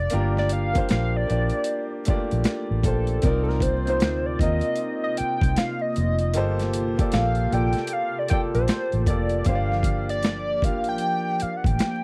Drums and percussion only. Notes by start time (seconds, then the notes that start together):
0.10 closed hi-hat
0.37 snare
0.49 closed hi-hat
0.75 kick, closed hi-hat
0.89 snare, closed hi-hat
1.30 closed hi-hat
1.50 closed hi-hat
1.64 closed hi-hat
2.05 kick, closed hi-hat
2.31 closed hi-hat
2.44 snare, closed hi-hat
2.83 kick, closed hi-hat
3.07 closed hi-hat
3.22 kick, closed hi-hat
3.49 snare
3.60 kick, closed hi-hat
3.87 closed hi-hat
4.00 snare, closed hi-hat
4.39 kick, closed hi-hat
4.61 closed hi-hat
4.76 closed hi-hat
5.17 closed hi-hat
5.41 kick, closed hi-hat
5.56 snare, closed hi-hat
5.96 closed hi-hat
6.19 closed hi-hat
6.34 closed hi-hat
6.59 snare, closed hi-hat
6.73 closed hi-hat
6.99 kick, closed hi-hat
7.12 snare, closed hi-hat
7.35 closed hi-hat
7.52 closed hi-hat
7.73 closed hi-hat
7.77 snare
7.87 closed hi-hat
8.28 kick, closed hi-hat
8.55 closed hi-hat
8.68 snare, closed hi-hat
8.92 closed hi-hat
9.06 kick, closed hi-hat
9.29 closed hi-hat
9.45 kick, closed hi-hat
9.72 snare
9.83 kick, closed hi-hat
10.09 closed hi-hat
10.23 snare, closed hi-hat
10.62 kick, closed hi-hat
10.84 closed hi-hat
10.98 closed hi-hat
11.40 closed hi-hat
11.64 kick, closed hi-hat
11.79 snare, closed hi-hat